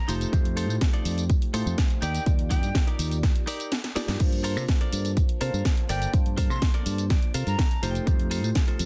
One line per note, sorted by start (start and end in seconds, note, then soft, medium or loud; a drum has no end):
0.00 0.14 A#5 loud
0.08 0.24 F1 loud
0.08 0.30 A3 loud
0.08 0.47 D#4 loud
0.08 0.30 D#4 medium
0.08 0.30 F4 medium
0.08 0.47 F4 medium
0.08 0.30 G4 medium
0.08 0.48 A4 medium
0.08 0.30 C5 loud
0.08 0.48 C5 loud
0.08 open hi-hat medium
0.08 tambourine medium
0.21 closed hi-hat soft
0.21 tambourine soft
0.32 0.69 F2 loud
0.32 1.51 A3 medium
0.32 1.51 D#4 medium
0.32 1.51 F4 medium
0.32 1.51 G4 medium
0.32 1.51 C5 loud
0.32 kick loud
0.32 closed hi-hat medium
0.32 tambourine soft
0.45 closed hi-hat medium
0.57 0.75 D#4 loud
0.57 0.75 F4 loud
0.57 0.75 A4 loud
0.57 0.75 C5 loud
0.57 open hi-hat loud
0.57 tambourine medium
0.69 0.77 A2 loud
0.69 tambourine soft
0.81 kick loud
0.81 snare loud
0.81 closed hi-hat medium
0.81 tambourine soft
0.93 1.23 D#4 medium
0.93 1.24 F4 medium
0.93 1.24 A4 medium
0.93 1.24 D5 loud
0.93 closed hi-hat medium
1.05 1.35 F2 loud
1.05 open hi-hat medium
1.05 tambourine medium
1.18 closed hi-hat soft
1.18 tambourine soft
1.30 kick loud
1.30 closed hi-hat medium
1.30 tambourine soft
1.42 closed hi-hat medium
1.53 1.62 A2 medium
1.53 2.01 A3 medium
1.53 2.01 D#4 medium
1.53 1.78 D#4 loud
1.53 2.01 F4 medium
1.53 1.78 F4 loud
1.53 2.01 G4 medium
1.53 1.78 A4 loud
1.53 1.78 C5 loud
1.53 2.01 C5 medium
1.53 open hi-hat loud
1.53 tambourine medium
1.66 1.74 F2 loud
1.66 tambourine soft
1.78 kick loud
1.78 snare loud
1.78 closed hi-hat medium
1.78 tambourine soft
1.90 closed hi-hat medium
2.02 2.18 D#2 loud
2.02 2.41 D#4 medium
2.02 2.41 G4 medium
2.02 2.41 A#4 medium
2.02 2.41 D5 medium
2.02 2.24 G5 loud
2.02 open hi-hat medium
2.02 tambourine medium
2.15 closed hi-hat soft
2.15 tambourine soft
2.26 2.63 D#2 loud
2.26 3.44 A#3 medium
2.26 3.44 D#4 medium
2.26 3.45 F4 medium
2.26 3.45 G4 medium
2.26 3.45 D5 medium
2.26 kick loud
2.26 closed hi-hat medium
2.26 tambourine soft
2.39 closed hi-hat medium
2.50 2.69 D#4 loud
2.50 2.69 G4 medium
2.50 2.69 A#4 loud
2.50 2.69 D5 loud
2.50 2.87 G5 loud
2.50 kick medium
2.50 open hi-hat loud
2.50 tambourine medium
2.63 2.70 G2 loud
2.63 closed hi-hat soft
2.63 tambourine soft
2.75 kick loud
2.75 snare loud
2.75 closed hi-hat medium
2.75 tambourine soft
2.87 3.17 D#4 medium
2.87 3.17 G4 medium
2.87 3.17 A#4 medium
2.87 3.17 D5 medium
2.87 closed hi-hat medium
2.99 3.28 D#2 loud
2.99 open hi-hat medium
2.99 tambourine medium
3.11 closed hi-hat soft
3.11 tambourine soft
3.23 kick loud
3.23 snare medium
3.23 closed hi-hat medium
3.23 tambourine soft
3.36 closed hi-hat medium
3.47 3.72 D#4 loud
3.47 3.72 G4 medium
3.47 3.72 A#4 loud
3.47 3.72 D5 loud
3.47 open hi-hat loud
3.47 tambourine medium
3.60 closed hi-hat soft
3.60 tambourine soft
3.72 snare loud
3.72 closed hi-hat medium
3.72 tambourine soft
3.84 snare medium
3.84 closed hi-hat medium
3.95 4.17 A#3 medium
3.95 4.20 D#4 medium
3.95 4.17 D#4 medium
3.95 4.17 F4 medium
3.95 4.17 G4 medium
3.95 4.20 G4 medium
3.95 4.20 A#4 medium
3.95 4.17 D5 medium
3.95 4.20 D5 medium
3.95 muted fingered electric bass stroke soft
3.95 snare medium
3.95 open hi-hat medium
3.95 tambourine medium
4.08 4.16 G2 medium
4.08 snare medium
4.08 closed hi-hat soft
4.08 tambourine soft
4.19 5.38 A#3 medium
4.19 5.38 D4 medium
4.19 5.38 F4 medium
4.19 5.39 C5 loud
4.19 5.38 A5 medium
4.19 kick loud
4.19 closed hi-hat medium
4.19 tambourine soft
4.19 crash medium
4.33 closed hi-hat medium
4.44 4.62 F4 loud
4.44 4.62 A4 loud
4.44 4.63 A#4 loud
4.44 4.63 C5 loud
4.44 open hi-hat loud
4.44 tambourine medium
4.57 4.64 C3 loud
4.57 tambourine soft
4.68 kick loud
4.68 snare loud
4.68 closed hi-hat medium
4.68 tambourine soft
4.81 5.11 F4 medium
4.81 5.11 A4 medium
4.81 5.11 A#4 medium
4.81 5.11 D5 loud
4.81 closed hi-hat medium
4.93 5.22 G2 loud
4.93 open hi-hat medium
4.93 tambourine medium
5.05 closed hi-hat soft
5.05 tambourine soft
5.17 kick loud
5.17 closed hi-hat medium
5.17 tambourine soft
5.29 closed hi-hat medium
5.40 5.49 C3 medium
5.40 6.10 A#3 medium
5.40 6.11 D4 medium
5.40 6.11 F4 medium
5.40 5.65 F4 medium
5.40 5.65 A4 loud
5.40 5.65 A#4 loud
5.40 5.65 C5 loud
5.40 6.11 C5 medium
5.40 6.11 A5 medium
5.40 open hi-hat loud
5.40 tambourine medium
5.54 5.61 G2 loud
5.54 tambourine soft
5.65 kick loud
5.65 snare loud
5.65 closed hi-hat medium
5.65 tambourine soft
5.77 closed hi-hat medium
5.89 6.05 G1 loud
5.89 6.13 F4 medium
5.89 6.14 A4 medium
5.89 6.14 A#4 medium
5.89 6.14 D5 loud
5.89 6.11 G5 loud
5.89 open hi-hat medium
5.89 tambourine medium
6.02 closed hi-hat soft
6.02 tambourine soft
6.13 6.50 G2 loud
6.13 7.31 A#3 medium
6.13 7.32 D4 medium
6.13 7.32 F4 medium
6.13 7.32 C5 medium
6.13 7.32 A5 medium
6.13 kick loud
6.13 closed hi-hat medium
6.13 tambourine soft
6.26 closed hi-hat medium
6.37 6.56 F4 loud
6.37 6.56 A4 medium
6.37 6.56 A#4 medium
6.37 6.56 C5 loud
6.37 kick medium
6.37 open hi-hat loud
6.37 tambourine medium
6.50 6.58 C3 loud
6.50 6.72 C6 medium
6.50 tambourine soft
6.62 kick loud
6.62 snare loud
6.62 closed hi-hat medium
6.62 tambourine soft
6.74 7.04 F4 medium
6.74 7.04 A4 medium
6.74 6.86 A#4 medium
6.74 7.04 D5 loud
6.74 closed hi-hat medium
6.86 7.15 G2 loud
6.86 7.09 C5 medium
6.86 open hi-hat medium
6.86 tambourine medium
6.98 closed hi-hat soft
6.98 tambourine soft
7.10 7.33 D5 medium
7.10 kick loud
7.10 snare medium
7.10 closed hi-hat medium
7.10 tambourine soft
7.22 closed hi-hat medium
7.34 7.42 C3 medium
7.34 7.59 F4 loud
7.34 7.59 A4 medium
7.34 7.59 A#4 medium
7.34 7.59 C5 loud
7.34 7.57 F5 medium
7.34 open hi-hat loud
7.34 tambourine medium
7.47 7.54 G2 loud
7.47 7.88 A#5 medium
7.47 closed hi-hat soft
7.47 tambourine soft
7.59 kick loud
7.59 snare loud
7.59 closed hi-hat medium
7.59 tambourine soft
7.71 closed hi-hat medium
7.82 7.98 F1 loud
7.82 8.04 A3 loud
7.82 8.04 D#4 medium
7.82 8.22 D#4 medium
7.82 8.04 F4 medium
7.82 8.22 F4 medium
7.82 8.04 G4 medium
7.82 8.22 A4 medium
7.82 8.22 C5 loud
7.82 8.04 C5 loud
7.82 open hi-hat loud
7.82 tambourine medium
7.91 8.06 G5 medium
7.95 closed hi-hat soft
7.95 tambourine soft
8.06 8.43 F2 loud
8.06 8.85 A3 medium
8.06 8.85 D#4 medium
8.06 8.85 F4 medium
8.06 8.85 G4 medium
8.06 8.85 C5 loud
8.06 kick loud
8.06 closed hi-hat medium
8.06 tambourine soft
8.20 closed hi-hat medium
8.31 8.49 D#4 loud
8.31 8.49 F4 medium
8.31 8.50 A4 loud
8.31 8.50 C5 loud
8.31 open hi-hat loud
8.31 tambourine medium
8.43 8.51 A2 loud
8.43 tambourine soft
8.55 kick loud
8.55 snare loud
8.55 closed hi-hat medium
8.55 tambourine soft
8.67 8.85 D#4 medium
8.67 8.85 F4 medium
8.67 8.85 A4 medium
8.67 8.85 C5 medium
8.67 closed hi-hat medium
8.79 8.85 F2 loud
8.79 open hi-hat loud
8.79 tambourine medium